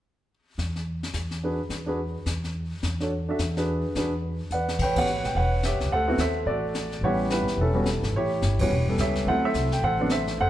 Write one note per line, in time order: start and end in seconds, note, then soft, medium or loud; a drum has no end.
0.31 brush sweep soft
0.58 1.02 E2 medium
0.58 snare soft
0.58 hi-hat pedal soft
0.76 snare soft
0.87 brush sweep soft
1.03 snare soft
1.13 1.58 E2 medium
1.13 snare soft
1.13 hi-hat pedal soft
1.31 snare soft
1.42 1.59 D4 soft
1.42 1.59 F#4 soft
1.42 1.59 G#4 soft
1.42 1.59 B4 medium
1.42 brush sweep soft
1.69 2.14 E2 medium
1.69 snare soft
1.69 hi-hat pedal soft
1.86 1.97 D4 medium
1.86 1.98 F#4 soft
1.86 1.98 G#4 soft
1.86 1.98 B4 medium
1.98 brush sweep soft
2.26 2.70 E2 medium
2.26 snare soft
2.26 hi-hat pedal medium
2.44 snare soft
2.55 brush sweep soft
2.82 3.27 E2 medium
2.82 snare soft
2.82 hi-hat pedal soft
3.00 3.10 D4 soft
3.00 3.11 F#4 soft
3.00 3.11 A4 soft
3.00 3.11 C#5 medium
3.00 snare soft
3.11 brush sweep soft
3.29 3.38 D4 medium
3.29 3.39 F#4 soft
3.29 3.39 A4 soft
3.29 3.39 E5 medium
3.39 3.83 E2 medium
3.39 snare soft
3.39 hi-hat pedal soft
3.57 3.94 D4 medium
3.57 3.94 F#4 soft
3.57 3.94 G#4 soft
3.57 3.94 B4 medium
3.57 snare soft
3.67 brush sweep soft
3.95 4.39 E2 medium
3.95 4.11 D4 medium
3.95 4.11 F#4 soft
3.95 4.12 G#4 soft
3.95 4.12 B4 medium
3.95 snare soft
3.95 hi-hat pedal soft
4.23 brush sweep soft
4.51 4.77 E2 medium
4.51 4.79 B4 medium
4.51 4.79 D5 soft
4.51 4.81 F#5 medium
4.51 hi-hat pedal soft
4.68 snare soft
4.79 5.21 A1 medium
4.79 4.96 G5 medium
4.79 brush sweep soft
4.79 kick medium
4.79 crash medium
4.83 4.98 B4 medium
4.83 4.98 C#5 medium
4.96 5.06 B3 medium
4.96 5.06 C#4 soft
4.96 5.07 F#4 soft
4.96 5.07 G4 medium
4.96 5.37 C#5 medium
4.96 5.26 F#5 medium
4.96 kick medium
4.96 ride medium
5.00 5.36 B4 medium
5.07 hi-hat pedal soft
5.24 5.34 G#1 medium
5.24 5.35 G5 medium
5.24 snare soft
5.35 5.70 E1 medium
5.35 5.88 B4 medium
5.35 5.65 C#5 medium
5.35 5.62 F#5 medium
5.35 brush sweep soft
5.63 5.91 G4 medium
5.63 5.91 C#5 medium
5.63 5.90 E5 medium
5.63 snare medium
5.63 hi-hat pedal soft
5.72 5.81 B1 soft
5.80 5.90 C#2 medium
5.80 snare soft
5.91 6.17 D2 medium
5.91 6.20 A4 medium
5.91 6.19 C5 medium
5.91 6.21 F#5 medium
5.91 brush sweep soft
6.07 6.18 B3 medium
6.07 6.18 C4 medium
6.07 6.18 E4 medium
6.07 6.19 F#4 medium
6.18 6.44 D#2 medium
6.18 6.46 A4 medium
6.18 6.72 C5 medium
6.18 6.49 E5 medium
6.18 snare soft
6.18 hi-hat pedal soft
6.46 7.00 A1 medium
6.46 7.00 F#4 medium
6.46 7.00 A4 medium
6.46 6.99 D5 medium
6.46 brush sweep soft
6.74 snare soft
6.74 hi-hat pedal soft
6.92 snare soft
7.01 7.44 A1 medium
7.01 7.45 G3 medium
7.01 7.45 B3 soft
7.01 7.45 C#4 medium
7.01 7.31 E4 medium
7.01 7.30 C#5 medium
7.01 7.45 F#5 medium
7.01 brush sweep soft
7.05 7.31 G4 medium
7.30 7.60 E4 medium
7.30 7.84 G4 soft
7.30 7.60 B4 medium
7.30 snare soft
7.30 hi-hat pedal soft
7.47 muted upright bass stroke soft
7.47 snare soft
7.57 8.00 E1 medium
7.57 8.12 A4 medium
7.57 brush sweep soft
7.61 7.74 C#4 medium
7.61 8.12 E4 soft
7.74 7.85 G3 medium
7.74 7.85 B3 medium
7.74 7.85 C#4 medium
7.74 7.85 F#4 medium
7.85 snare soft
7.85 hi-hat pedal medium
8.03 8.12 G#1 medium
8.03 snare soft
8.13 8.40 A1 medium
8.13 8.57 C#5 medium
8.13 brush sweep soft
8.17 8.60 E4 medium
8.17 8.61 G4 medium
8.42 8.68 G1 medium
8.42 snare medium
8.42 hi-hat pedal soft
8.59 8.70 G3 soft
8.59 8.70 B3 soft
8.59 8.70 C#4 soft
8.59 9.12 E4 medium
8.59 8.70 F#4 medium
8.59 9.00 G4 medium
8.59 8.99 C#5 medium
8.59 kick medium
8.59 ride medium
8.69 8.96 E1 medium
8.69 brush sweep soft
8.88 9.24 G3 soft
8.88 9.25 B3 soft
8.88 9.25 C#4 soft
8.88 9.25 A4 medium
8.98 9.24 C#2 medium
8.98 9.26 G4 medium
8.98 9.26 C#5 medium
8.98 9.28 E5 medium
8.98 snare soft
8.98 hi-hat pedal soft
9.15 snare soft
9.26 9.52 D2 medium
9.26 9.68 F#3 medium
9.26 9.68 A3 soft
9.26 9.68 C4 soft
9.26 9.69 E4 medium
9.26 9.44 A4 medium
9.26 9.44 C5 medium
9.26 9.45 F#5 medium
9.26 brush sweep soft
9.45 9.83 A4 medium
9.45 9.82 C5 medium
9.45 9.70 E5 medium
9.54 9.80 C2 medium
9.54 snare soft
9.54 hi-hat pedal soft
9.72 9.83 G5 medium
9.72 snare soft
9.82 10.35 A1 medium
9.82 10.11 A4 medium
9.82 10.11 C5 medium
9.82 10.09 F#5 medium
9.82 brush sweep soft
9.99 10.09 F#3 medium
9.99 10.09 B3 medium
9.99 10.09 C4 medium
9.99 10.10 D4 medium
10.09 10.40 A4 medium
10.09 10.40 C5 medium
10.09 10.37 E5 medium
10.09 snare soft
10.09 hi-hat pedal soft
10.27 snare soft
10.38 10.50 F#1 medium
10.38 10.50 A4 medium
10.38 10.50 C5 medium
10.38 10.50 F#5 medium
10.38 brush sweep soft